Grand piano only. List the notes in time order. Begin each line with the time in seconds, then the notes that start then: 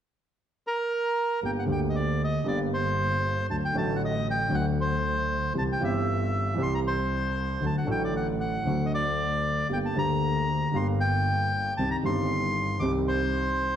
1.42 G1 G2 D3 G3 A#3 G4
1.66 D2 D3 G3 A#3 G4
2.44 G1 G2 D3 G3 A#3
2.48 G4
3.50 D2 D3 F#3 A3 F#4
3.73 A1 A2 D3 F#3 A3
3.78 F#4
4.49 D2 D3 F#3 A3
4.53 F#4
5.54 C2 C3 E3 G3 C4 G4
5.79 G1 G2 E3 G3 C4
5.83 G4
6.54 C2 C3 E3 G3 C4
6.59 G4
7.61 D2 D3 F#3 A3 F#4
7.85 A1 A2 D3 F#3 A3
7.89 F#4
8.65 D2 D3 F#3 A3 F#4
9.69 G1 G2 D3 G3 A#3 G4
9.94 D2 D3 G3 A#3 G4
10.71 G1 G2 D3 G3 A#3
10.76 G4
11.79 C2 C3 D#3 G3 C4 G4
12.03 G1 G2 D#3 G3 C4 G4
12.80 C2 C3 D#3 G3 C4 G4